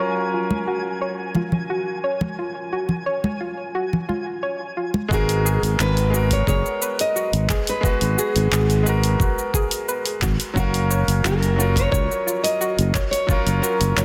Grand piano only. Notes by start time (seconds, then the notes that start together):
Already playing: F#3 C#4 F4 A#4
5.08 G#3 B3
5.13 F#4 A#4
6.10 G#3 B3
6.14 F#4 A#4
7.81 G#3 B3 F#4
7.87 B4
8.83 G#3 B3
8.87 F#4 A#4
10.54 F#3 C#4 F5
10.59 A#4
11.56 F#3 C#4 F4
11.62 A#4
13.27 F#3 C#4 F4
13.32 A#4